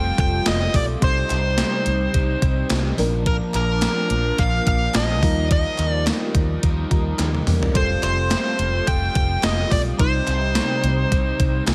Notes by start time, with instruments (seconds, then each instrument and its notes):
Already playing: fretless electric bass F1, distorted electric guitar F3 C4 F4, fm electric piano G3 C4 F4 A4, analog synth pad G3 A3 F4, lead electric guitar G5, synth bell G6
0.17 fretless electric bass F1, fm electric piano G3 C4 F4 A4, lead electric guitar G5, synth bell G6, kick, closed hi-hat
0.46 fretless electric bass F1, lead electric guitar D#5, synth bell D#6, snare, clap, closed hi-hat, tambourine
0.74 fretless electric bass B1, lead electric guitar D5, synth bell D6, kick, open hi-hat
1.01 fretless electric bass C2, distorted electric guitar C3 G3, analog synth pad C3 D#4, fm electric piano G3 C4 D#4 C5, lead electric guitar C5, synth bell C6, kick, closed hi-hat
1.05 distorted electric guitar C4
1.30 fretless electric bass C2, clap, closed hi-hat
1.58 snare, clap, closed hi-hat, tambourine
1.86 fretless electric bass C2, closed hi-hat
2.14 fretless electric bass C2, distorted electric guitar C3 G3 C4, kick, closed hi-hat
2.42 fretless electric bass C2, kick, closed hi-hat
2.70 fretless electric bass C2, snare, clap, closed hi-hat, tambourine
2.97 fretless electric bass A#1, distorted electric guitar A#2 F3 A#3, fm electric piano F3 A#3 D4 A#4, analog synth pad F3 A#3 D4, open hi-hat
3.26 lead electric guitar A#4, synth bell A#5, kick, closed hi-hat
3.54 fretless electric bass A#1, lead electric guitar A#4, synth bell A#5, clap, closed hi-hat
3.82 snare, clap, closed hi-hat, tambourine
4.10 fretless electric bass A#1, closed hi-hat
4.38 fretless electric bass A#1, distorted electric guitar A#2 F3 A#3, lead electric guitar F5, synth bell F6, kick, closed hi-hat
4.67 fretless electric bass A#1, lead electric guitar F5, synth bell F6, kick, closed hi-hat
4.94 fretless electric bass A#1, lead electric guitar D#5, synth bell D#6, snare, clap, closed hi-hat, tambourine
5.21 fretless electric bass D#2, analog synth pad F3 G3 D#4, fm electric piano G3 D#4 F4 A#4, distorted electric guitar A#3 D#4, kick, open hi-hat
5.50 distorted electric guitar D#3 A#3 D#4, lead electric guitar D#5, synth bell D#6, kick, closed hi-hat
5.78 fretless electric bass D#2, clap, closed hi-hat
5.89 lead electric guitar D5, synth bell D6
6.07 snare, clap, closed hi-hat, tambourine
6.35 fretless electric bass D#2, kick, closed hi-hat
6.62 fretless electric bass D#2, distorted electric guitar D#3 A#3 D#4, kick, closed hi-hat
6.90 fretless electric bass D#2, fm electric piano G3 D#4 F4 A#4, kick, closed hi-hat
7.19 fretless electric bass D#2, snare, clap, closed hi-hat
7.35 high tom
7.47 fretless electric bass E2, mid tom, open hi-hat
7.63 floor tom
7.74 fretless electric bass F1, distorted electric guitar F3 C4 F4, fm electric piano G3 C4 F4 A4, analog synth pad A3 F4, lead electric guitar C5, synth bell C6, kick, closed hi-hat
8.03 fretless electric bass F1, lead electric guitar C5, synth bell C6, clap, closed hi-hat
8.31 snare, clap, closed hi-hat, tambourine
8.59 fretless electric bass F1, closed hi-hat
8.86 fretless electric bass F1, distorted electric guitar F3 C4 F4, lead electric guitar G5, synth bell G6, kick, closed hi-hat
9.15 fretless electric bass F1, lead electric guitar G5, synth bell G6, kick, closed hi-hat
9.43 fretless electric bass F1, lead electric guitar D#5, synth bell D#6, snare, clap, closed hi-hat, tambourine
9.70 fretless electric bass B1, lead electric guitar D5, synth bell D6, kick, open hi-hat
9.98 fretless electric bass C2, distorted electric guitar C3 G3 C4, analog synth pad C3 G3 D#4, fm electric piano G3 C4 D#4 C5, lead electric guitar C5, synth bell C6, kick, closed hi-hat
10.27 fretless electric bass C2, clap, closed hi-hat
10.55 snare, clap, closed hi-hat, tambourine
10.83 fretless electric bass C2, closed hi-hat
11.11 fretless electric bass C2, distorted electric guitar C3 G3 C4, kick, closed hi-hat
11.40 fretless electric bass C2, kick, closed hi-hat
11.67 fretless electric bass C2, snare, clap, closed hi-hat, tambourine